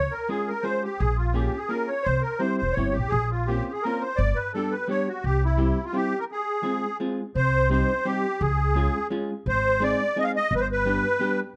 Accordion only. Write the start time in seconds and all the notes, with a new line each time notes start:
Already playing: C#5
0.11 A#4
0.30 G#4
0.48 A#4
0.63 C5
0.84 G4
0.99 G#4
1.17 F4
1.34 G4
1.57 G#4
1.68 A#4
1.88 C#5
2.03 C5
2.22 A#4
2.39 C5
2.58 C5
2.72 C#5
2.92 G4
3.08 G#4
3.31 F4
3.47 G4
3.72 G#4
3.83 A#4
4.01 C5
4.16 D5
4.36 B4
4.54 A4
4.71 B4
4.90 C#5
5.08 F#4
5.24 G4
5.45 E4
5.85 F4
5.95 G4
6.20 A#4
6.32 G#4
7.36 C5
7.71 C5
8.05 G4
8.41 G#4
9.48 C5
9.83 D5
10.19 D#5
10.24 F5
10.36 D#5
10.56 B4
10.61 C5
10.72 B4